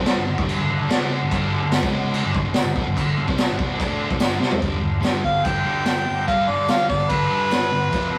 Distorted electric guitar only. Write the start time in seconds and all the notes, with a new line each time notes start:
Already playing: C3 G3 C4
0.17 G2 D3
0.28 G2 D3
0.38 G2 D3 G3
0.58 G2 D3
0.68 G2 D3
0.79 G2 D3
0.88 C#3 G#3 C#4
1.21 G2 D3
1.30 G2 D3 G3
1.61 G2 D3
1.81 C#3 G#3 C#4
2.23 G2 D3
2.34 G2 D3
2.45 G2 D3
2.54 muted distorted electric guitar stroke
2.64 G2 D3
2.75 A#2 F3
2.85 G2 D3
2.96 G2 D3
3.17 G2 D3
3.27 C3 G3 C4
3.49 G2 D3
3.58 C3 G3 C4
3.78 D3 A3 D4
4.10 C3 G3
4.19 G2 D3 G3
4.39 C3 G3 C4
4.60 G2 D3 G3
4.80 G2 D3
5.01 G2 D3 G3
5.22 G2 D3
5.45 G2 D3
5.65 G2 D3 G3
5.86 G2 D3
6.07 G2 D3
6.27 G2 D3 G3
6.48 G2 D3
6.68 G2 D3 G3
6.89 G2 D3
7.10 G2 D3
7.29 G2 D3 G3
7.50 G2 D3
7.71 G2 D3
7.90 F2 C3 F3
8.11 F2 C3